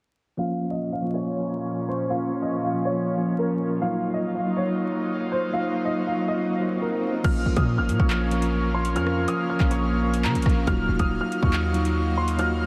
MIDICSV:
0, 0, Header, 1, 7, 480
1, 0, Start_track
1, 0, Key_signature, -5, "minor"
1, 0, Tempo, 428571
1, 435, Time_signature, 4, 2, 24, 8
1, 14183, End_track
2, 0, Start_track
2, 0, Title_t, "Grand piano"
2, 0, Program_c, 0, 0
2, 435, Note_on_c, 0, 77, 95
2, 773, Note_off_c, 0, 77, 0
2, 793, Note_on_c, 0, 75, 72
2, 1007, Note_off_c, 0, 75, 0
2, 1034, Note_on_c, 0, 77, 83
2, 1248, Note_off_c, 0, 77, 0
2, 1276, Note_on_c, 0, 73, 69
2, 2070, Note_off_c, 0, 73, 0
2, 2113, Note_on_c, 0, 72, 87
2, 2327, Note_off_c, 0, 72, 0
2, 2354, Note_on_c, 0, 77, 98
2, 2693, Note_off_c, 0, 77, 0
2, 2713, Note_on_c, 0, 75, 78
2, 2927, Note_off_c, 0, 75, 0
2, 2951, Note_on_c, 0, 77, 71
2, 3166, Note_off_c, 0, 77, 0
2, 3193, Note_on_c, 0, 73, 83
2, 3758, Note_off_c, 0, 73, 0
2, 3793, Note_on_c, 0, 70, 68
2, 4245, Note_off_c, 0, 70, 0
2, 4274, Note_on_c, 0, 77, 101
2, 4613, Note_off_c, 0, 77, 0
2, 4633, Note_on_c, 0, 75, 74
2, 4847, Note_off_c, 0, 75, 0
2, 4871, Note_on_c, 0, 77, 76
2, 5086, Note_off_c, 0, 77, 0
2, 5115, Note_on_c, 0, 73, 69
2, 5910, Note_off_c, 0, 73, 0
2, 5956, Note_on_c, 0, 72, 88
2, 6168, Note_off_c, 0, 72, 0
2, 6199, Note_on_c, 0, 77, 106
2, 6535, Note_off_c, 0, 77, 0
2, 6553, Note_on_c, 0, 75, 83
2, 6767, Note_off_c, 0, 75, 0
2, 6796, Note_on_c, 0, 77, 83
2, 7009, Note_off_c, 0, 77, 0
2, 7035, Note_on_c, 0, 75, 83
2, 7599, Note_off_c, 0, 75, 0
2, 7634, Note_on_c, 0, 70, 69
2, 8085, Note_off_c, 0, 70, 0
2, 8114, Note_on_c, 0, 89, 99
2, 8453, Note_off_c, 0, 89, 0
2, 8473, Note_on_c, 0, 87, 75
2, 8687, Note_off_c, 0, 87, 0
2, 8715, Note_on_c, 0, 89, 85
2, 8928, Note_off_c, 0, 89, 0
2, 8957, Note_on_c, 0, 85, 72
2, 9751, Note_off_c, 0, 85, 0
2, 9794, Note_on_c, 0, 84, 90
2, 10007, Note_off_c, 0, 84, 0
2, 10036, Note_on_c, 0, 89, 100
2, 10374, Note_off_c, 0, 89, 0
2, 10396, Note_on_c, 0, 87, 87
2, 10609, Note_off_c, 0, 87, 0
2, 10635, Note_on_c, 0, 89, 76
2, 10848, Note_off_c, 0, 89, 0
2, 10876, Note_on_c, 0, 85, 90
2, 11439, Note_off_c, 0, 85, 0
2, 11475, Note_on_c, 0, 82, 73
2, 11926, Note_off_c, 0, 82, 0
2, 11956, Note_on_c, 0, 89, 105
2, 12294, Note_off_c, 0, 89, 0
2, 12314, Note_on_c, 0, 87, 77
2, 12528, Note_off_c, 0, 87, 0
2, 12553, Note_on_c, 0, 89, 84
2, 12767, Note_off_c, 0, 89, 0
2, 12795, Note_on_c, 0, 85, 72
2, 13590, Note_off_c, 0, 85, 0
2, 13635, Note_on_c, 0, 84, 93
2, 13848, Note_off_c, 0, 84, 0
2, 13879, Note_on_c, 0, 89, 107
2, 14183, Note_off_c, 0, 89, 0
2, 14183, End_track
3, 0, Start_track
3, 0, Title_t, "Analog synth pad"
3, 0, Program_c, 1, 89
3, 434, Note_on_c, 1, 53, 71
3, 434, Note_on_c, 1, 61, 89
3, 435, Note_on_c, 1, 46, 82
3, 4236, Note_off_c, 1, 46, 0
3, 4236, Note_off_c, 1, 53, 0
3, 4236, Note_off_c, 1, 61, 0
3, 4274, Note_on_c, 1, 63, 76
3, 4274, Note_on_c, 1, 65, 89
3, 4275, Note_on_c, 1, 54, 80
3, 8076, Note_off_c, 1, 54, 0
3, 8076, Note_off_c, 1, 63, 0
3, 8076, Note_off_c, 1, 65, 0
3, 8116, Note_on_c, 1, 58, 83
3, 8116, Note_on_c, 1, 61, 79
3, 8116, Note_on_c, 1, 77, 92
3, 11917, Note_off_c, 1, 58, 0
3, 11917, Note_off_c, 1, 61, 0
3, 11955, Note_on_c, 1, 54, 85
3, 11955, Note_on_c, 1, 63, 76
3, 14183, Note_off_c, 1, 54, 0
3, 14183, Note_off_c, 1, 63, 0
3, 14183, Note_off_c, 1, 77, 0
3, 14183, End_track
4, 0, Start_track
4, 0, Title_t, "Tine electric piano"
4, 0, Program_c, 2, 4
4, 418, Note_on_c, 2, 53, 94
4, 428, Note_on_c, 2, 58, 83
4, 437, Note_on_c, 2, 61, 83
4, 447, Note_on_c, 2, 65, 103
4, 625, Control_c, 2, 64, 127
4, 943, Note_off_c, 2, 53, 0
4, 948, Note_off_c, 2, 58, 0
4, 953, Note_off_c, 2, 61, 0
4, 958, Note_off_c, 2, 65, 0
4, 1143, Note_on_c, 2, 53, 74
4, 1153, Note_on_c, 2, 58, 72
4, 1162, Note_on_c, 2, 61, 65
4, 1171, Note_on_c, 2, 65, 81
4, 1838, Note_off_c, 2, 53, 0
4, 1843, Note_off_c, 2, 58, 0
4, 1848, Note_off_c, 2, 61, 0
4, 1852, Note_off_c, 2, 65, 0
4, 2340, Note_on_c, 2, 53, 90
4, 2350, Note_on_c, 2, 58, 85
4, 2359, Note_on_c, 2, 61, 87
4, 2369, Note_on_c, 2, 65, 109
4, 2865, Note_off_c, 2, 53, 0
4, 2869, Note_off_c, 2, 58, 0
4, 2874, Note_off_c, 2, 61, 0
4, 2879, Note_off_c, 2, 65, 0
4, 3060, Note_on_c, 2, 53, 74
4, 3069, Note_on_c, 2, 58, 68
4, 3079, Note_on_c, 2, 61, 67
4, 3088, Note_on_c, 2, 65, 85
4, 3412, Note_off_c, 2, 53, 0
4, 3417, Note_off_c, 2, 58, 0
4, 3422, Note_off_c, 2, 61, 0
4, 3426, Note_off_c, 2, 65, 0
4, 3545, Note_on_c, 2, 53, 73
4, 3555, Note_on_c, 2, 58, 62
4, 3564, Note_on_c, 2, 61, 66
4, 3574, Note_on_c, 2, 65, 79
4, 4067, Note_off_c, 2, 53, 0
4, 4072, Note_off_c, 2, 58, 0
4, 4077, Note_off_c, 2, 61, 0
4, 4081, Note_off_c, 2, 65, 0
4, 4259, Note_on_c, 2, 54, 89
4, 4269, Note_on_c, 2, 58, 84
4, 4278, Note_on_c, 2, 63, 97
4, 4288, Note_on_c, 2, 65, 113
4, 4290, Control_c, 2, 64, 0
4, 4461, Control_c, 2, 64, 127
4, 4784, Note_off_c, 2, 54, 0
4, 4789, Note_off_c, 2, 58, 0
4, 4793, Note_off_c, 2, 63, 0
4, 4798, Note_off_c, 2, 65, 0
4, 4976, Note_on_c, 2, 54, 73
4, 4985, Note_on_c, 2, 58, 69
4, 4995, Note_on_c, 2, 63, 70
4, 5004, Note_on_c, 2, 65, 76
4, 5675, Note_off_c, 2, 54, 0
4, 5679, Note_off_c, 2, 58, 0
4, 5684, Note_off_c, 2, 63, 0
4, 5689, Note_off_c, 2, 65, 0
4, 6179, Note_on_c, 2, 54, 90
4, 6189, Note_on_c, 2, 58, 83
4, 6199, Note_on_c, 2, 63, 93
4, 6208, Note_on_c, 2, 65, 100
4, 6704, Note_off_c, 2, 54, 0
4, 6709, Note_off_c, 2, 58, 0
4, 6714, Note_off_c, 2, 63, 0
4, 6718, Note_off_c, 2, 65, 0
4, 6901, Note_on_c, 2, 54, 67
4, 6910, Note_on_c, 2, 58, 72
4, 6920, Note_on_c, 2, 63, 70
4, 6929, Note_on_c, 2, 65, 83
4, 7252, Note_off_c, 2, 54, 0
4, 7257, Note_off_c, 2, 58, 0
4, 7262, Note_off_c, 2, 63, 0
4, 7267, Note_off_c, 2, 65, 0
4, 7385, Note_on_c, 2, 54, 77
4, 7394, Note_on_c, 2, 58, 64
4, 7404, Note_on_c, 2, 63, 64
4, 7413, Note_on_c, 2, 65, 79
4, 7907, Note_off_c, 2, 54, 0
4, 7911, Note_off_c, 2, 58, 0
4, 7916, Note_off_c, 2, 63, 0
4, 7921, Note_off_c, 2, 65, 0
4, 8099, Note_on_c, 2, 53, 103
4, 8106, Note_on_c, 2, 58, 87
4, 8113, Note_on_c, 2, 61, 97
4, 8120, Note_on_c, 2, 65, 89
4, 8127, Control_c, 2, 64, 0
4, 8127, Note_on_c, 2, 70, 105
4, 8338, Control_c, 2, 64, 127
4, 8796, Note_off_c, 2, 53, 0
4, 8800, Note_off_c, 2, 58, 0
4, 8803, Note_off_c, 2, 61, 0
4, 8807, Note_off_c, 2, 65, 0
4, 8810, Note_off_c, 2, 70, 0
4, 9303, Note_on_c, 2, 53, 75
4, 9310, Note_on_c, 2, 58, 70
4, 9317, Note_on_c, 2, 61, 68
4, 9324, Note_on_c, 2, 65, 67
4, 9331, Note_on_c, 2, 70, 84
4, 9826, Note_off_c, 2, 53, 0
4, 9829, Note_off_c, 2, 58, 0
4, 9833, Note_off_c, 2, 61, 0
4, 9836, Note_off_c, 2, 65, 0
4, 9840, Note_off_c, 2, 70, 0
4, 10021, Note_on_c, 2, 53, 103
4, 10028, Note_on_c, 2, 58, 85
4, 10035, Note_on_c, 2, 61, 90
4, 10042, Note_on_c, 2, 65, 93
4, 10050, Note_on_c, 2, 70, 107
4, 10545, Note_off_c, 2, 53, 0
4, 10548, Note_off_c, 2, 58, 0
4, 10552, Note_off_c, 2, 61, 0
4, 10556, Note_off_c, 2, 65, 0
4, 10559, Note_off_c, 2, 70, 0
4, 10739, Note_on_c, 2, 53, 73
4, 10746, Note_on_c, 2, 58, 73
4, 10753, Note_on_c, 2, 61, 76
4, 10760, Note_on_c, 2, 65, 71
4, 10767, Note_on_c, 2, 70, 89
4, 11091, Note_off_c, 2, 53, 0
4, 11095, Note_off_c, 2, 58, 0
4, 11098, Note_off_c, 2, 61, 0
4, 11102, Note_off_c, 2, 65, 0
4, 11105, Note_off_c, 2, 70, 0
4, 11220, Note_on_c, 2, 53, 73
4, 11227, Note_on_c, 2, 58, 68
4, 11234, Note_on_c, 2, 61, 67
4, 11241, Note_on_c, 2, 65, 71
4, 11248, Note_on_c, 2, 70, 77
4, 11744, Note_off_c, 2, 53, 0
4, 11748, Note_off_c, 2, 58, 0
4, 11751, Note_off_c, 2, 61, 0
4, 11755, Note_off_c, 2, 65, 0
4, 11758, Note_off_c, 2, 70, 0
4, 11946, Note_on_c, 2, 54, 98
4, 11953, Note_on_c, 2, 58, 94
4, 11961, Note_on_c, 2, 63, 94
4, 11968, Note_on_c, 2, 65, 86
4, 11971, Control_c, 2, 64, 0
4, 11975, Note_on_c, 2, 66, 106
4, 12178, Control_c, 2, 64, 127
4, 12640, Note_off_c, 2, 54, 0
4, 12643, Note_off_c, 2, 58, 0
4, 12647, Note_off_c, 2, 63, 0
4, 12651, Note_off_c, 2, 65, 0
4, 12654, Note_off_c, 2, 66, 0
4, 13139, Note_on_c, 2, 54, 82
4, 13147, Note_on_c, 2, 58, 67
4, 13153, Note_on_c, 2, 63, 68
4, 13160, Note_on_c, 2, 65, 72
4, 13168, Note_on_c, 2, 66, 84
4, 13664, Note_off_c, 2, 54, 0
4, 13668, Note_off_c, 2, 58, 0
4, 13671, Note_off_c, 2, 63, 0
4, 13675, Note_off_c, 2, 65, 0
4, 13678, Note_off_c, 2, 66, 0
4, 13861, Note_on_c, 2, 54, 100
4, 13868, Note_on_c, 2, 58, 91
4, 13875, Note_on_c, 2, 63, 94
4, 13882, Note_on_c, 2, 65, 87
4, 13889, Note_on_c, 2, 66, 110
4, 14183, Note_off_c, 2, 54, 0
4, 14183, Note_off_c, 2, 58, 0
4, 14183, Note_off_c, 2, 63, 0
4, 14183, Note_off_c, 2, 65, 0
4, 14183, Note_off_c, 2, 66, 0
4, 14183, End_track
5, 0, Start_track
5, 0, Title_t, "808-style bass"
5, 0, Program_c, 3, 38
5, 8114, Note_on_c, 3, 34, 109
5, 8345, Note_off_c, 3, 34, 0
5, 8354, Note_on_c, 3, 34, 107
5, 8469, Note_off_c, 3, 34, 0
5, 8474, Note_on_c, 3, 46, 107
5, 8714, Note_on_c, 3, 32, 100
5, 8731, Note_off_c, 3, 46, 0
5, 8834, Note_on_c, 3, 46, 99
5, 8851, Note_off_c, 3, 32, 0
5, 8948, Note_off_c, 3, 46, 0
5, 8955, Note_on_c, 3, 34, 111
5, 10034, Note_on_c, 3, 41, 98
5, 10051, Note_off_c, 3, 34, 0
5, 10376, Note_off_c, 3, 41, 0
5, 10753, Note_on_c, 3, 34, 103
5, 11474, Note_on_c, 3, 49, 98
5, 11491, Note_off_c, 3, 34, 0
5, 11594, Note_on_c, 3, 34, 97
5, 11611, Note_off_c, 3, 49, 0
5, 11708, Note_off_c, 3, 34, 0
5, 11715, Note_on_c, 3, 34, 105
5, 11945, Note_off_c, 3, 34, 0
5, 11955, Note_on_c, 3, 27, 112
5, 12185, Note_off_c, 3, 27, 0
5, 12194, Note_on_c, 3, 27, 109
5, 12309, Note_off_c, 3, 27, 0
5, 12315, Note_on_c, 3, 27, 101
5, 12545, Note_off_c, 3, 27, 0
5, 12796, Note_on_c, 3, 39, 102
5, 14183, Note_off_c, 3, 39, 0
5, 14183, End_track
6, 0, Start_track
6, 0, Title_t, "Swell"
6, 0, Program_c, 4, 103
6, 4274, Note_on_c, 4, 60, 81
6, 8114, Note_off_c, 4, 60, 0
6, 14183, End_track
7, 0, Start_track
7, 0, Title_t, "Drums"
7, 8113, Note_on_c, 9, 42, 71
7, 8114, Note_on_c, 9, 36, 119
7, 8114, Note_on_c, 9, 49, 97
7, 8225, Note_off_c, 9, 42, 0
7, 8226, Note_off_c, 9, 36, 0
7, 8226, Note_off_c, 9, 49, 0
7, 8472, Note_on_c, 9, 42, 73
7, 8474, Note_on_c, 9, 36, 101
7, 8584, Note_off_c, 9, 42, 0
7, 8586, Note_off_c, 9, 36, 0
7, 8837, Note_on_c, 9, 42, 87
7, 8949, Note_off_c, 9, 42, 0
7, 8955, Note_on_c, 9, 36, 91
7, 9067, Note_off_c, 9, 36, 0
7, 9073, Note_on_c, 9, 39, 114
7, 9185, Note_off_c, 9, 39, 0
7, 9311, Note_on_c, 9, 42, 86
7, 9423, Note_off_c, 9, 42, 0
7, 9432, Note_on_c, 9, 42, 89
7, 9544, Note_off_c, 9, 42, 0
7, 9911, Note_on_c, 9, 42, 90
7, 10023, Note_off_c, 9, 42, 0
7, 10033, Note_on_c, 9, 42, 73
7, 10145, Note_off_c, 9, 42, 0
7, 10155, Note_on_c, 9, 37, 72
7, 10267, Note_off_c, 9, 37, 0
7, 10392, Note_on_c, 9, 42, 80
7, 10504, Note_off_c, 9, 42, 0
7, 10753, Note_on_c, 9, 36, 92
7, 10755, Note_on_c, 9, 39, 73
7, 10865, Note_off_c, 9, 36, 0
7, 10867, Note_off_c, 9, 39, 0
7, 10874, Note_on_c, 9, 42, 83
7, 10986, Note_off_c, 9, 42, 0
7, 11352, Note_on_c, 9, 42, 93
7, 11464, Note_off_c, 9, 42, 0
7, 11474, Note_on_c, 9, 39, 127
7, 11586, Note_off_c, 9, 39, 0
7, 11595, Note_on_c, 9, 42, 62
7, 11674, Note_off_c, 9, 42, 0
7, 11674, Note_on_c, 9, 42, 64
7, 11715, Note_on_c, 9, 36, 97
7, 11715, Note_on_c, 9, 37, 98
7, 11754, Note_off_c, 9, 42, 0
7, 11754, Note_on_c, 9, 42, 64
7, 11827, Note_off_c, 9, 36, 0
7, 11827, Note_off_c, 9, 37, 0
7, 11866, Note_off_c, 9, 42, 0
7, 11953, Note_on_c, 9, 42, 73
7, 11955, Note_on_c, 9, 36, 122
7, 12065, Note_off_c, 9, 42, 0
7, 12067, Note_off_c, 9, 36, 0
7, 12313, Note_on_c, 9, 42, 74
7, 12315, Note_on_c, 9, 36, 96
7, 12425, Note_off_c, 9, 42, 0
7, 12427, Note_off_c, 9, 36, 0
7, 12678, Note_on_c, 9, 42, 89
7, 12790, Note_off_c, 9, 42, 0
7, 12796, Note_on_c, 9, 36, 97
7, 12908, Note_off_c, 9, 36, 0
7, 12915, Note_on_c, 9, 39, 119
7, 13027, Note_off_c, 9, 39, 0
7, 13152, Note_on_c, 9, 42, 82
7, 13264, Note_off_c, 9, 42, 0
7, 13272, Note_on_c, 9, 42, 89
7, 13384, Note_off_c, 9, 42, 0
7, 13751, Note_on_c, 9, 42, 90
7, 13863, Note_off_c, 9, 42, 0
7, 13873, Note_on_c, 9, 42, 71
7, 13985, Note_off_c, 9, 42, 0
7, 14183, End_track
0, 0, End_of_file